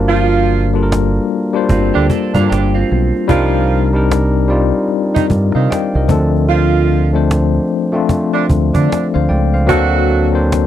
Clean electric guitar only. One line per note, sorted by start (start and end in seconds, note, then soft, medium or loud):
1.70 1.93 C4 medium
1.70 1.93 F4 medium
1.94 2.09 D4 medium
1.94 2.08 G4 medium
2.10 2.33 D4 medium
2.10 2.33 A4 medium
2.34 2.49 F4 medium
2.34 2.48 A#4 medium
2.50 2.73 D4 medium
2.50 2.73 G4 medium
2.74 3.27 C4 medium
2.74 3.26 F4 medium